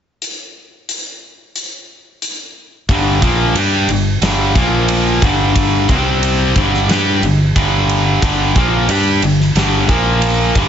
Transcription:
0.22 closed hi-hat
0.89 closed hi-hat
1.56 closed hi-hat
2.22 closed hi-hat
2.89 fingered electric bass G1, overdriven electric guitar G2 D3 G3, kick, ride
3.22 fingered electric bass A#1, overdriven electric guitar A#2 F3 A#3, kick, ride
3.55 fingered electric bass G2, overdriven electric guitar G3 D4 G4, ride
3.88 fingered electric bass G1, overdriven electric guitar G2 D3, ride
4.22 fingered electric bass G1, overdriven electric guitar G2 D3 G3, snare, ride
4.55 fingered electric bass A#1, overdriven electric guitar A#2 F3 A#3, kick, ride
4.88 ride
5.22 fingered electric bass G1, overdriven electric guitar G2 D3 G3, kick, ride
5.56 kick, ride
5.89 fingered electric bass C2, overdriven electric guitar C3 G3 C4, kick, ride
6.23 ride
6.56 fingered electric bass G1, overdriven electric guitar G2 D3 G3, kick, ride
6.74 snare
6.88 fingered electric bass G2, overdriven electric guitar G3 D4 G4, snare, ride
7.22 fingered electric bass G1, overdriven electric guitar G2 D3, ride
7.55 fingered electric bass G1, overdriven electric guitar G2 D3 G3, kick, ride
7.89 ride
8.22 fingered electric bass G1, overdriven electric guitar G2 D3 G3, kick, ride
8.56 fingered electric bass A#1, overdriven electric guitar A#2 F3 A#3, kick, ride
8.88 fingered electric bass G2, overdriven electric guitar G3 D4 G4, ride
9.22 fingered electric bass G1, overdriven electric guitar G2 D3, ride
9.40 snare
9.55 fingered electric bass G1, overdriven electric guitar G2 D3 G3, snare, ride
9.88 fingered electric bass A#1, overdriven electric guitar A#2 F3 A#3, kick, ride
10.22 ride
10.55 fingered electric bass G1, overdriven electric guitar G2 D3 G3, kick, ride

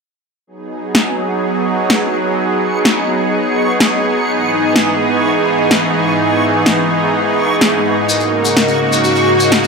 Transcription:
0.47 supersaw synth F#3 B3 D#4 G#4, synth texture C#6
0.95 snare
1.90 snare
2.85 snare
3.80 snare
4.28 supersaw synth G#2 E3
4.76 snare
5.71 snare
6.66 snare
7.61 snare
8.09 supersaw synth C#3 A#3 F#4, analog synth lead A#4, maracas
8.20 maracas
8.45 maracas
8.57 snare, maracas
8.68 maracas
8.92 maracas
9.04 analog synth lead F#4, maracas
9.16 maracas
9.40 maracas
9.52 snare, maracas
9.64 maracas

